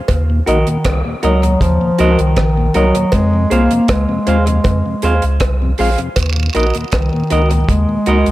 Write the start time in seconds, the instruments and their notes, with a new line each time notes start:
0.08 sub bass D#2, kick, closed hi-hat, cowbell
0.30 tonewheel organ D#2 A#2
0.46 sub bass A#1, bass clarinet D#3, tonewheel organ A#3 D#4 F#4, clean electric guitar F#4 A#4 D#5, closed hi-hat
0.67 tonewheel organ D#2 A#2, closed hi-hat
0.85 sub bass C2, bass clarinet D#3, kick, cross-stick, closed hi-hat, cowbell
1.05 tonewheel organ D#2 A#2
1.23 sub bass C#2, bass clarinet F#3, tonewheel organ A#3 D#4 F#4, clean electric guitar F#4 A#4 D#5, closed hi-hat
1.43 tonewheel organ D#2 A#2, muted clean electric guitar stroke, closed hi-hat
1.61 sub bass D#2, bass clarinet F3, kick, closed hi-hat
1.81 tonewheel organ D#2 A#2
1.98 sub bass C#2, tonewheel organ A#3 D#4 F#4, clean electric guitar F#4 A#4 D#5, closed hi-hat
2.19 sub bass C2, bass clarinet D#3, closed hi-hat
2.37 sub bass A#1, kick, cross-stick, closed hi-hat, cowbell
2.57 tonewheel organ D#2 A#2
2.74 sub bass C2, bass clarinet F#3, tonewheel organ A#3 D#4 F#4, clean electric guitar F#4 A#4 D#5, closed hi-hat
2.95 tonewheel organ D#2 A#2, closed hi-hat
3.12 sub bass F2, bass clarinet G#3, kick, closed hi-hat, cowbell
3.34 tonewheel organ F2 C3
3.50 sub bass C2, tonewheel organ G#3 C4 F4, bass clarinet A#3, clean electric guitar G#4 C5 F5, closed hi-hat
3.71 tonewheel organ F2 C3, closed hi-hat
3.88 sub bass C#2, bass clarinet G#3, kick, cross-stick, closed hi-hat, cowbell
4.09 tonewheel organ F2 C3
4.27 sub bass D#2, tonewheel organ G#3 C4 F4, clean electric guitar G#4 C5 F5, closed hi-hat
4.47 tonewheel organ F2 C3, muted clean electric guitar stroke, closed hi-hat
4.64 sub bass F2, kick, closed hi-hat, cowbell
4.86 tonewheel organ F2 C3
5.02 sub bass D#2, tonewheel organ G#3 C4 F4, clean electric guitar G#4 C5 F5, closed hi-hat
5.22 sub bass C#2, closed hi-hat
5.40 sub bass C2, kick, cross-stick, closed hi-hat, cowbell
5.62 tonewheel organ F2 C3
5.78 sub bass A#1, tonewheel organ G#3 C4 F4, clean electric guitar G#4 C5 F5, open hi-hat
5.98 tonewheel organ F2 C3, closed hi-hat
6.16 sub bass D#2, kick, closed hi-hat, cowbell, vibraslap
6.37 tonewheel organ D#2 A#2
6.55 sub bass A#1, tonewheel organ A#3 D#4 F#4, clean electric guitar F#4 A#4 D#5, closed hi-hat
6.75 tonewheel organ D#2 A#2, closed hi-hat
6.92 sub bass C2, bass clarinet D#3, kick, cross-stick, closed hi-hat, cowbell
7.13 tonewheel organ D#2 A#2
7.30 sub bass C#2, tonewheel organ A#3 D#4 F#4, clean electric guitar F#4 A#4 D#5, closed hi-hat
7.51 tonewheel organ D#2 A#2, muted clean electric guitar stroke, closed hi-hat
7.69 sub bass D#2, bass clarinet G#3, kick, closed hi-hat
7.89 tonewheel organ D#2 A#2
8.06 sub bass C#2, tonewheel organ A#3 D#4 F#4, clean electric guitar F#4 A#4 D#5, closed hi-hat
8.26 sub bass C2, closed hi-hat